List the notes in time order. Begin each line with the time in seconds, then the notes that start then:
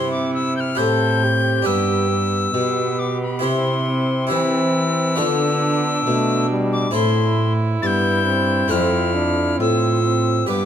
Already playing: C3 C4 E4 G4 C5 C6
0.12 D6
0.35 E6
0.57 F6 G6
0.75 A2 C4 E4 G4 C5 G6
0.79 A4
1.24 G4
1.62 G2 B3 D4 G4 B4 E6
2.10 B3
2.54 B2 G4
2.99 D6
3.22 B5
3.39 C3 C4 E4 G4 C5 C6
3.85 C4
4.27 E3 C4 E4 G4 C5 E6
4.31 E3
5.16 D3 B3 D4 F4 A4
6.06 B2 A3
6.50 G3
6.72 D6
6.91 A2 A3 C4 E4 A4 C6
7.82 G2 B3 A6
7.86 G6
8.26 C4
8.68 F2 C4 A4 C5 F6
9.14 D4
9.59 A2 C4 F4 E6
10.04 C4
10.46 G2 B3 G4 B4 D6